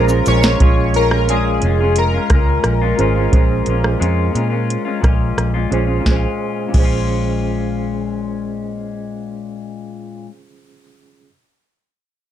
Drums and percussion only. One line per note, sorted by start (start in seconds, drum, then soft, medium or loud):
0.09 shaker medium
0.26 closed hi-hat soft
0.26 shaker soft
0.43 snare medium
0.43 shaker soft
0.60 kick loud
0.60 closed hi-hat medium
0.94 closed hi-hat soft
1.11 cross-stick medium
1.29 closed hi-hat medium
1.62 closed hi-hat soft
1.96 closed hi-hat medium
2.30 kick medium
2.30 cross-stick medium
2.30 closed hi-hat soft
2.64 cross-stick medium
2.64 closed hi-hat medium
2.99 closed hi-hat soft
3.33 kick loud
3.33 closed hi-hat medium
3.66 closed hi-hat soft
3.84 cross-stick medium
4.02 closed hi-hat medium
4.35 closed hi-hat soft
4.70 closed hi-hat medium
5.04 kick medium
5.04 cross-stick medium
5.04 closed hi-hat soft
5.38 cross-stick medium
5.38 closed hi-hat medium
5.72 closed hi-hat soft
6.06 kick medium
6.06 snare medium
6.74 kick loud
6.74 crash medium